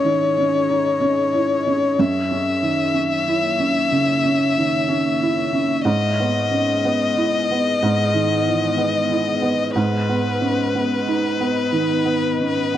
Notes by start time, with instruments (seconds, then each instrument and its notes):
Already playing: felt piano G#2 C#4 D#4 E4, ambient pad C#4 G#4 D#5, violin C#5
0.04 felt piano D#3
0.38 felt piano C#4
0.69 felt piano D#4
1.01 felt piano C#4
1.34 felt piano E4
1.67 felt piano C#4
1.97 felt piano F#2, ambient pad A#3 C#5 E5, violin E5
2.31 felt piano C#4
2.63 felt piano D#3
2.94 felt piano C#4
3.28 felt piano E4
3.60 felt piano C#4
3.92 felt piano C#3
4.25 felt piano C#4
4.58 felt piano D#3
4.89 felt piano C#4
5.22 felt piano E4
5.53 felt piano C#4
5.85 felt piano G#2, ambient pad B3 G#4 D#5, violin D#5
6.20 felt piano B3
6.51 felt piano C#4
6.84 felt piano B3
7.17 felt piano E4
7.51 felt piano B3
7.82 felt piano G#2
8.14 felt piano D#3
8.47 felt piano E3
8.77 felt piano B3
9.10 felt piano E4
9.42 felt piano B3
9.75 felt piano G#2, ambient pad B3 D#4 D#5, violin B4
10.09 felt piano B3
10.41 felt piano C#4
10.75 felt piano B3
11.08 felt piano D#4
11.40 felt piano B3
11.73 felt piano D#3
12.05 felt piano B3
12.40 felt piano C#4
12.74 felt piano B3